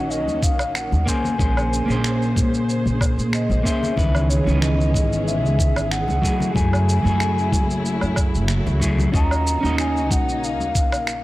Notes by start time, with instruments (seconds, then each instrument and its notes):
Already playing: upright bass A#1, string section D#3 F#3 A#3 C#4, clean electric guitar C#4 D#4 F#4 D#5, flute F#5
0.10 flute D#5, shaker
0.28 upright bass D#2, high conga, shaker
0.43 flute F5, kick, shaker
0.59 upright bass A#1, finger snap, low woodblock, shaker
0.75 flute F#5, finger snap, shaker
0.92 upright bass D#2, high conga, low conga, shaker
1.06 string section C#3 G#4 C5, clean electric guitar A#3 C#4 G#4 C5, flute G#5, kick, shaker
1.24 low conga, shaker
1.38 upright bass A#1, clean electric guitar A#3 C#4 G#4 C5, kick, high conga, shaker
1.57 low woodblock, shaker
1.73 shaker
1.86 upright bass A#1, clean electric guitar A#3 C#4 G#4, high conga
1.90 clean electric guitar C5, shaker
2.04 finger snap, shaker
2.22 shaker
2.36 upright bass A#2, kick, high conga, shaker
2.54 shaker
2.69 shaker
2.86 upright bass A#1, high conga, shaker
3.01 kick, low woodblock, shaker
3.18 upright bass A#2, shaker
3.33 flute D#5, finger snap, shaker
3.49 upright bass A#1, high conga, low conga, shaker
3.63 clean electric guitar A#3 C#4 G#4 C5, flute E5, kick, shaker
3.83 low conga, shaker
3.96 upright bass C#2, clean electric guitar D#3 E3 C#4 B4, string section G#3 B3 C#4, kick, high conga, shaker
4.15 low woodblock, shaker
4.29 flute C#5, shaker
4.44 upright bass C#2, clean electric guitar D#3 E3 C#4, high conga, shaker
4.50 clean electric guitar B4
4.62 flute D#5, finger snap, shaker
4.81 shaker
4.94 upright bass G#1, kick, high conga, shaker
5.13 shaker
5.26 flute E5, shaker
5.43 upright bass C#2, high conga, shaker
5.59 kick, shaker
5.76 upright bass G#1, finger snap, low woodblock, shaker
5.91 flute F#5, finger snap, shaker
6.08 upright bass C#2, high conga, low conga, shaker
6.22 clean electric guitar F#3 A3 E4 G#4, string section F#3 A3 E4, kick, shaker
6.40 low conga, shaker
6.53 upright bass F#2, clean electric guitar F#3 A3 E4 G#4, flute G#5, kick, high conga, shaker
6.73 low woodblock, shaker
6.89 shaker
7.02 upright bass F#2, clean electric guitar F#3 A3 E4, high conga
7.06 clean electric guitar G#4, shaker
7.20 finger snap, shaker
7.38 shaker
7.52 upright bass F#1, kick, high conga, shaker
7.70 shaker
7.85 shaker
8.01 upright bass F#2, high conga, low woodblock, shaker
8.16 kick, low woodblock, shaker
8.35 upright bass F#1, shaker
8.48 finger snap, shaker
8.66 upright bass C#2, high conga, low conga, shaker
8.80 clean electric guitar F#3 A3 E4 G#4, kick, shaker
8.99 low conga, shaker
9.12 upright bass D#2, string section A#3 D#4, clean electric guitar C#4 F4 F#4 D#5, flute A#5, kick, high conga, shaker
9.31 low woodblock, shaker
9.47 shaker
9.61 upright bass D#2, clean electric guitar C#4 D#4 F#4, high conga, shaker
9.66 clean electric guitar D#5
9.78 flute G#5, finger snap, shaker
9.97 shaker
10.11 upright bass A#1, flute F#5, kick, high conga, shaker
10.29 shaker
10.44 flute F5, shaker
10.60 upright bass D#2, high conga, shaker
10.75 kick, shaker
10.92 upright bass A#1, finger snap, low woodblock, shaker
11.07 finger snap, shaker